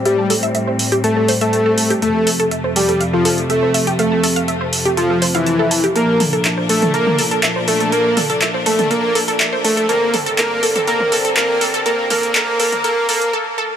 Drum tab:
HH |x-oxx-oxx-oxx-ox|x-oxx-oxx-oxx-ox|x-oxx-oxx-oxx-ox|x-oxx-oxx-oxx-ox|
CP |----------------|----------------|----------------|----x-------x---|
T2 |----------------|----------------|----------------|--o----o-o------|

HH |x-oxx-oxx-oxx-ox|x-oxx-oxx-oxx-ox|x-oxx-oxx-ox----|
CP |----x-------x---|----x-------x---|----x-----------|
T2 |--o----o--------|--o----o-o------|--o----o--------|